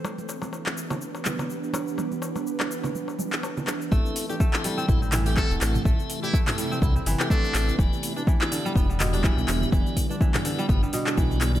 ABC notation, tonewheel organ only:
X:1
M:4/4
L:1/16
Q:"Swing 16ths" 1/4=124
K:Am
V:1 name="Tonewheel organ"
z16 | z16 | [CEAe]3 [CEAd] z [CEAe]3 [CEA^f] z2 [CEAe] [CEAf]4 | [CEAe]3 [CEAd] z [CEAe]3 [CEA^f] z2 [CEAe] [CEAf]4 |
[B,EGd]3 [B,EGB] z [B,EGd]3 [B,EGe] z2 [B,EGd] [B,EGe]4 | [B,EGd]3 [B,EGB] z [B,EGd]3 [B,EGe] z3 [B,EGd]3 [B,EGd] |]